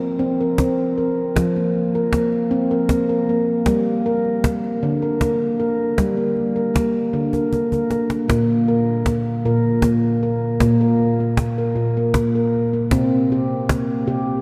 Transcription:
Already playing: F3 C4
0.01 cajon slap
0.19 C4
0.41 A#4
0.58 C4, cajon bass, cajon slap
0.78 cajon slap
0.98 A#4
1.36 F3, cajon bass, cajon slap
1.56 A#3, cajon slap
1.94 A#4, cajon slap
2.13 A#3, cajon bass, cajon slap
2.32 cajon slap
2.51 C4
2.71 A#4
2.89 A#3, cajon bass, cajon slap
3.09 A#4, cajon slap
3.29 A#3
3.66 G3 A#3, cajon bass, cajon slap
3.85 cajon slap
4.06 A#4
4.25 cajon slap
4.44 A#3, cajon bass, cajon slap
4.64 cajon slap
4.83 D3
5.02 A#4
5.21 A#3, cajon bass, cajon slap
5.40 cajon slap
5.60 A#4
5.98 G3, cajon bass, cajon slap
6.17 A#3
6.37 cajon slap
6.56 A#4, cajon slap
6.74 A#3, cajon bass, cajon slap
7.13 D3
7.33 A#4, cajon bass
7.53 A#3, cajon bass
7.72 A#4, cajon bass
7.91 A#3, cajon slap
8.10 cajon slap
8.28 A#2 A#3, cajon bass, cajon slap
8.67 A#4, cajon slap
9.06 A#3, cajon bass, cajon slap
9.45 A#2 A#4
9.82 A#3, cajon bass, cajon slap
10.23 A#4
10.60 A#2 A#3, cajon bass, cajon slap
10.81 A#4
10.99 cajon slap
11.20 A#3
11.37 cajon bass, cajon slap
11.58 A#4
11.76 A#2
11.97 A#3
12.14 cajon bass, cajon slap
12.35 A#4
12.73 A#3
12.91 C3 C4, cajon bass, cajon slap
13.30 G4, cajon slap
13.69 A#3, cajon bass, cajon slap
14.07 C3 G4

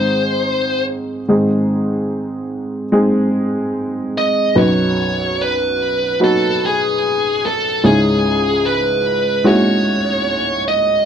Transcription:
Already playing: G#2 D#3 G#3 C4 D#4 G#4 C5
1.29 G#2 D#3 G#3 C4 D#4 G#4
2.92 G#3 C4 D#4 G#4
4.18 D#5
4.55 B1 F#2 F#3 B3 D#4 F#4 B4 C#5
5.42 B4
6.20 F#3 B3 D#4 F#4 B4
6.24 A4
6.66 G#4
7.46 A4
7.84 C#2 G#2 G#3 C#4 D#4 E4 G#4
8.66 B4
9.44 G#3 C#4 D#4 E4 F#4 C#5
10.68 D#5

